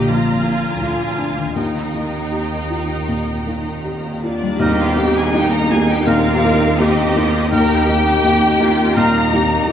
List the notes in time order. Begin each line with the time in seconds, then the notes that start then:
Already playing: A#1 A#2 D3 A#3 F4 A#5
0.08 F3 F4 F5 A#5
0.44 A#3 G#5
0.81 D2 D3 F4 F5
1.18 D4
1.38 D#3
1.43 A#3
1.47 F4
1.51 G4
1.56 D#2 D#3 D#4 G5 A#5
1.94 A#3
2.32 G4
2.70 F4
3.08 A#2
3.47 A#3
3.85 G4
4.23 D4 F4 D5
4.43 G3
4.47 A#3
4.51 D#4
4.56 D#2 G4 D#5
4.60 D#2 A#3 C4 D#4 G4 A#4 D#5, tam-tam
4.80 F4 F5
4.97 A#3 D#4 G4 G5
5.16 G#4 G#5
5.34 A#3 D#4 G4 G5
5.52 A#4 A#5
5.71 A#3 D#4 G4 G#4 G#5
5.89 G4 G5
6.06 A#2 C4 D#4 F4 G4 A#4 F5
6.44 A#3 D#4 G4
6.79 A#3 D#4 G4 D#5
7.16 A#3 D#4 F4 G4
7.50 D#2 A#3 D#4 G4 A#4 G5
7.88 A#3 D#4 G4
8.24 A#3 D#4 G4
8.60 A#3 D#4 F4 G4
8.95 A#2 G3 D#4 F4 A#4 A#5
9.32 A#3 D#4 G4
9.68 D2 G3 A#3 D#4 F4 G4